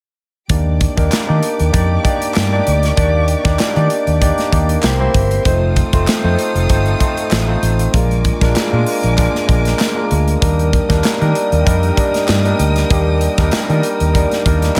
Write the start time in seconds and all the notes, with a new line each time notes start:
0.49 D#2 A#3 D4 D#4 G4 D5 D6, kick, closed hi-hat
0.81 kick, closed hi-hat
0.97 D#2 A#3 D4 D#4 G4 A#4, kick, closed hi-hat
1.12 muted fingered electric bass stroke, snare, clap, closed hi-hat
1.27 D#3 A#3 D4 D#4 G4 D5
1.43 closed hi-hat
1.59 D#2, closed hi-hat
1.72 F2 A#3 D4 D#4 G4 D5, kick, closed hi-hat
2.04 A#3 D4 D#4 G4 D5, kick, closed hi-hat
2.22 closed hi-hat
2.34 G2, snare, clap, closed hi-hat
2.52 A#3 D4 D#4 G4 D5
2.67 D2, closed hi-hat
2.83 snare, closed hi-hat
2.97 D#2 A#3 D4 D#4 G4 D5, kick, closed hi-hat
3.28 closed hi-hat
3.44 D#2 A#3 D4 D#4 G4 D5, kick, snare, closed hi-hat
3.59 snare, clap, closed hi-hat
3.75 D#3 A#3 D4 D#4 G4 D5, closed hi-hat
3.90 closed hi-hat
4.07 D#2, closed hi-hat
4.21 A#3 D4 D#4 G4 D5, kick, closed hi-hat
4.38 snare, closed hi-hat
4.51 D#2 A#3 D4 D#4 G4 D5, kick, closed hi-hat
4.69 closed hi-hat
4.82 C2 A#3 C4 E4 G4 A#4 C5 E5 C6, snare, clap, closed hi-hat
4.99 A#3 C4 E4 G4 C5
5.14 G1, kick, closed hi-hat
5.31 closed hi-hat
5.45 F1 A3 C4 D#4 F4 A4 C5 F5 D#6, kick, closed hi-hat
5.76 kick, closed hi-hat
5.93 F1 A3 C4 D#4 F4 C5, kick, closed hi-hat
6.07 muted fingered electric bass stroke, snare, clap, closed hi-hat
6.23 F2 A3 C4 D#4 F4 C5
6.39 closed hi-hat
6.55 F1, closed hi-hat
6.69 G1 A3 C4 D#4 F4 C5, kick, closed hi-hat
6.86 closed hi-hat
6.99 A3 C4 D#4 F4 C5, kick, closed hi-hat
7.17 closed hi-hat
7.31 A1, snare, clap, closed hi-hat
7.47 A3 C4 D#4 F4 C5
7.63 A1, closed hi-hat
7.79 closed hi-hat
7.92 A#1 G#3 A#3 D4 F4 A#4 G#5 D6, kick, closed hi-hat
8.11 closed hi-hat
8.25 kick, closed hi-hat
8.41 A#1 G#3 A#3 D4 F4 A#4, kick, snare, closed hi-hat
8.55 snare, clap, closed hi-hat
8.72 A#2 G#3 A#3 D4 F4 A#4
8.86 open hi-hat
9.03 A#1, closed hi-hat
9.17 G#3 A#3 D4 F4 A#4, kick, clap, closed hi-hat
9.35 snare
9.47 A#1 G#3 A#3 D4 F4 A#4, kick, closed hi-hat
9.65 snare, closed hi-hat
9.79 snare, clap, closed hi-hat
9.95 G#3 A#3 D4 F4 A#4
10.11 D2, closed hi-hat
10.28 closed hi-hat
10.41 D#2 G3 A#3 D4 D#4 A#4 G5 D#6, kick, closed hi-hat
10.59 closed hi-hat
10.73 kick, closed hi-hat
10.89 D#2 G3 A#3 D4 D#4 A#4, kick, snare, closed hi-hat
11.04 snare, clap, closed hi-hat
11.20 D#3 G3 A#3 D4 D#4 A#4, closed hi-hat
11.35 closed hi-hat
11.52 D#2, closed hi-hat
11.65 F2 G3 A#3 D4 D#4 A#4, kick, closed hi-hat
11.83 closed hi-hat
11.96 G3 A#3 D4 D#4 A#4, kick, closed hi-hat
12.14 snare, closed hi-hat
12.28 G2, snare, clap, closed hi-hat
12.45 G3 A#3 D4 D#4 A#4, closed hi-hat
12.59 D2, closed hi-hat
12.76 snare, closed hi-hat
12.90 D#2 G3 A#3 D4 D#4 G4, kick, closed hi-hat
13.21 closed hi-hat
13.38 D#2 G3 A#3 D4 D#4 A#4, kick, snare, closed hi-hat
13.51 snare, clap, closed hi-hat
13.69 D#3 G3 A#3 D4 D#4 A#4, closed hi-hat
13.83 closed hi-hat
14.00 D#2, closed hi-hat
14.13 G3 A#3 D4 D#4 A#4, kick, closed hi-hat
14.31 snare, closed hi-hat
14.45 D#2 G3 A#3 D4 D#4 A#4, kick, closed hi-hat
14.62 snare, closed hi-hat
14.76 C2 G3 A#3 A#5, clap, closed hi-hat